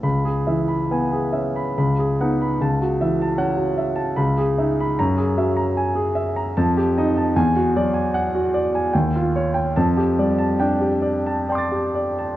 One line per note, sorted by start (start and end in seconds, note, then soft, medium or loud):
0.03 1.71 C#2 medium
0.03 0.38 B5 soft
0.25 0.60 G#4 soft
0.47 1.17 E3 soft
0.47 0.82 E5 soft
0.68 1.03 B5 soft
0.91 1.59 B3 soft
0.91 1.26 G#5 soft
1.12 1.46 G#4 soft
1.33 1.75 C#4 soft
1.33 1.67 E5 soft
1.56 1.76 B5 soft
1.78 2.56 C#2 soft
1.78 2.10 B5 soft
1.99 2.30 G#4 soft
2.21 2.56 B3 soft
2.21 2.56 D#4 soft
2.21 2.51 F#5 soft
2.41 2.60 B5 soft
2.61 4.15 C#2 medium
2.61 2.92 A5 soft
2.81 3.11 F#4 soft
3.01 3.63 E3 soft
3.01 3.31 E5 soft
3.22 3.51 A5 soft
3.38 4.01 C#4 soft
3.38 3.70 F#5 medium
3.57 3.89 F#4 soft
3.78 4.09 E5 soft
3.96 4.17 A5 soft
4.16 4.95 C#2 medium
4.16 4.49 B5 soft
4.38 4.70 G#4 soft
4.58 4.94 D#4 soft
4.58 4.90 E5 soft
4.80 4.99 B5 soft
4.99 6.53 F#2 medium
4.99 5.29 A#5 medium
5.17 5.49 G#4 soft
5.37 6.00 F#3 soft
5.37 5.69 E5 soft
5.56 5.88 A#5 soft
5.77 6.09 G#5 medium
5.95 6.28 G#4 soft
6.15 6.48 E5 medium
6.36 6.56 A#5 soft
6.57 7.33 F2 medium
6.57 6.88 A5 medium
6.77 7.08 G4 medium
6.98 7.32 D#4 soft
6.98 7.28 D#5 soft
7.17 7.36 A5 soft
7.36 8.89 E2 medium
7.36 7.67 G#5 medium
7.56 7.87 F#4 medium
7.76 8.38 F#3 soft
7.76 8.06 D5 medium
7.94 8.25 G#5 soft
8.14 8.45 F#5 medium
8.35 8.65 F#4 soft
8.54 8.85 D5 medium
8.75 8.94 G#5 medium
8.93 9.74 D#2 medium
8.93 9.25 G5 soft
9.16 9.47 F4 soft
9.36 9.68 C#5 medium
9.54 9.75 G5 soft
9.76 12.37 F2 medium
9.76 10.10 A5 medium
9.97 10.31 G4 soft
10.19 10.87 G3 soft
10.19 10.53 D5 soft
10.38 10.73 A5 soft
10.60 11.31 D4 soft
10.60 10.95 G5 soft
10.81 11.17 G4 soft
11.02 11.39 D5 soft
11.26 11.63 A5 soft
11.49 11.86 D5 soft
11.49 12.37 G5 soft
11.49 12.37 C6 soft
11.55 12.37 D6 soft
11.55 12.37 A6 soft
11.72 12.09 G4 soft
11.95 12.33 D5 soft
12.19 12.37 A5 soft